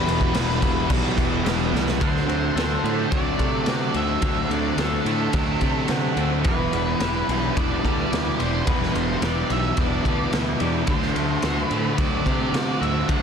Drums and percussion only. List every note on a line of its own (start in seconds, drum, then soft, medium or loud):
0.08 crash medium
0.21 kick medium
0.34 snare loud
0.34 crash medium
0.51 snare soft
0.62 kick loud
0.62 crash medium
0.90 kick loud
0.90 crash loud
1.18 kick medium
1.18 crash medium
1.46 snare loud
1.46 crash medium
1.75 snare medium
1.88 snare loud
2.01 kick loud
2.01 ride loud
2.16 snare soft
2.29 ride medium
2.57 snare loud
2.57 ride medium
2.85 ride medium
3.12 kick loud
3.12 ride medium
3.39 kick medium
3.39 ride medium
3.66 snare loud
3.66 ride medium
3.94 ride medium
4.22 kick loud
4.22 ride loud
4.51 ride medium
4.78 snare loud
4.78 ride medium
5.06 ride medium
5.33 kick loud
5.33 ride loud
5.61 kick medium
5.61 ride medium
5.88 snare loud
5.88 ride medium
6.17 ride medium
6.44 kick loud
6.44 ride medium
6.73 ride medium
7.00 snare loud
7.00 ride medium
7.29 ride medium
7.57 kick loud
7.57 ride medium
7.85 kick medium
7.85 ride medium
8.13 snare loud
8.13 ride medium
8.40 ride medium
8.67 kick loud
8.67 ride loud
8.83 snare soft
8.95 ride medium
9.22 snare loud
9.22 ride medium
9.50 ride medium
9.77 kick loud
9.77 ride medium
10.05 kick medium
10.05 ride medium
10.33 snare loud
10.33 ride medium
10.60 ride medium
10.87 kick loud
10.87 ride loud
11.02 snare soft
11.16 ride medium
11.42 snare loud
11.42 ride loud
11.71 ride medium
11.98 kick loud
11.98 ride medium
12.26 kick medium
12.26 ride medium
12.54 snare loud
12.54 ride medium
12.83 ride medium
13.09 kick loud
13.09 ride medium